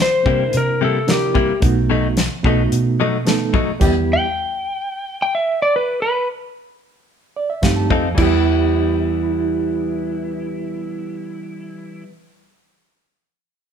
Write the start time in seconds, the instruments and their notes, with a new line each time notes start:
0.02 electric slide guitar C5
0.23 fingered electric bass C3, clean electric guitar C3 G3 A#3, reed electric piano A#3 D4 E4 A#4, kick
0.27 clean electric guitar E4
0.53 fingered electric bass C3, closed hi-hat
0.57 electric slide guitar A#4
0.81 clean electric guitar C3 G3 A#3 E4, electric slide guitar A4
1.07 reed electric piano A#3 D4 E4 A#4, electric slide guitar G4, snare, closed hi-hat
1.35 clean electric guitar C3 G3 A#3 E4, kick
1.60 fingered electric bass B1, reed electric piano A3 B3 D#4 F#4, kick, closed hi-hat
1.90 clean electric guitar B2 F#3 A3 D#4
2.17 snare, closed hi-hat
2.43 fingered electric bass B1, clean electric guitar B2 F#3 A3 D#4, reed electric piano A3 B3 D#4 F#4, kick
2.72 fingered electric bass B2, closed hi-hat
3.00 clean electric guitar B2 F#3 A3 D#4
3.25 reed electric piano A3 B3 D#4 A4, snare, closed hi-hat
3.54 clean electric guitar B2 F#3 A3 D#4, kick
3.80 fingered electric bass E2, reed electric piano G3 B3 E4 G4, kick, closed hi-hat, crash
4.13 electric slide guitar G5
5.22 electric slide guitar G5
5.35 electric slide guitar E5
5.62 electric slide guitar D5
5.76 electric slide guitar B4
6.02 electric slide guitar B4
7.36 reed electric piano D5
7.50 reed electric piano E5
7.62 fingered electric bass G2, reed electric piano A3 C4 D#4 G4 F5, kick, snare, closed hi-hat
7.76 reed electric piano A5
7.91 fingered electric bass F2, clean electric guitar F3 C4 D#4 A4, reed electric piano F5, kick
8.15 fingered electric bass E2, clean electric guitar E3, reed electric piano G3 B3, electric slide guitar E4, kick, crash
8.19 clean electric guitar G3 B3, reed electric piano E4 G4
8.27 clean electric guitar E4